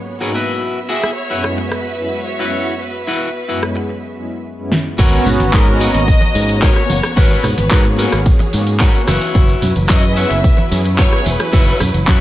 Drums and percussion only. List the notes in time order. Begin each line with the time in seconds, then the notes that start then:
1.03 cross-stick
1.44 cross-stick
1.72 cross-stick
3.63 cross-stick
4.72 snare
4.99 kick, closed hi-hat, crash, tambourine
5.13 tambourine
5.26 open hi-hat, tambourine, low conga
5.40 closed hi-hat, tambourine, high conga
5.53 kick, clap, closed hi-hat, tambourine
5.68 tambourine
5.81 open hi-hat, tambourine
5.94 closed hi-hat, tambourine
6.08 kick, closed hi-hat, tambourine
6.21 tambourine, high conga
6.35 open hi-hat, tambourine
6.49 closed hi-hat, tambourine
6.62 kick, clap, closed hi-hat, tambourine
6.76 cross-stick, tambourine
6.90 open hi-hat, tambourine, high conga
7.03 cross-stick, closed hi-hat, tambourine
7.17 kick, closed hi-hat, tambourine
7.31 tambourine
7.44 cross-stick, open hi-hat, tambourine, low conga
7.58 closed hi-hat, tambourine, high conga
7.71 kick, clap, closed hi-hat, tambourine
7.85 tambourine
7.99 open hi-hat, tambourine
8.12 cross-stick, closed hi-hat, tambourine
8.26 kick, closed hi-hat, tambourine
8.39 tambourine, high conga
8.53 open hi-hat, tambourine
8.67 closed hi-hat, tambourine
8.80 kick, clap, closed hi-hat, tambourine
8.94 tambourine
9.08 cross-stick, open hi-hat, tambourine, high conga
9.21 closed hi-hat, tambourine
9.35 kick, closed hi-hat, tambourine
9.49 tambourine
9.62 open hi-hat, tambourine, low conga
9.76 closed hi-hat, tambourine, high conga
9.89 kick, clap, closed hi-hat, tambourine
10.03 tambourine
10.17 open hi-hat, tambourine
10.31 closed hi-hat, tambourine
10.44 kick, closed hi-hat, tambourine
10.58 tambourine, high conga
10.72 open hi-hat, tambourine
10.85 closed hi-hat, tambourine
10.98 kick, clap, closed hi-hat, tambourine
11.13 cross-stick, tambourine
11.26 open hi-hat, tambourine, high conga
11.40 cross-stick, closed hi-hat, tambourine
11.53 kick, closed hi-hat, tambourine
11.67 tambourine
11.80 cross-stick, open hi-hat, tambourine, low conga
11.94 closed hi-hat, tambourine, high conga
12.07 kick, clap, closed hi-hat, tambourine